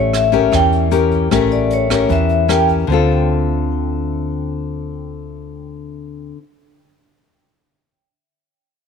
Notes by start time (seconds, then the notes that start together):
Already playing: A1 A3 C#4 G4 C#5
0.13 E5, cross-stick, closed hi-hat
0.32 C#4 G4 A#4, kick, closed hi-hat
0.52 E2 E3 G5, kick, cross-stick, closed hi-hat
0.72 closed hi-hat
0.91 C#4 G4 A#4, closed hi-hat
1.11 kick, closed hi-hat
1.31 A1 A3 C#4 G4 A#4, kick, cross-stick, closed hi-hat
1.51 D5, closed hi-hat
1.70 C#5, closed hi-hat
1.90 C#4 G4 A#4, kick, cross-stick, closed hi-hat
2.09 E2 E3 E5, kick, closed hi-hat
2.29 closed hi-hat
2.48 C#4 G4 A#4 G5, cross-stick, closed hi-hat
2.69 kick, closed hi-hat
2.87 D2 D3 C4
2.92 F4 A4